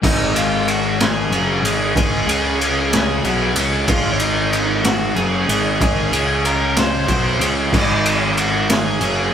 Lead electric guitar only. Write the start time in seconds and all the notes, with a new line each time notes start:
0.05 D#4 D#5
0.35 F4 F5
0.68 F#4 F#5
0.99 G#4 G#5
1.96 G#4 G#5
3.89 F4 F5
4.12 C#5
4.21 D#4 D#5
4.83 F#4 F#5
5.15 G#4 G#5
5.82 G#4 G#5
6.45 A#4 A#5
6.78 C5 C6
7.74 D#4 D#5
8.20 C#5
8.37 F#4 F#5
8.71 G#4 G#5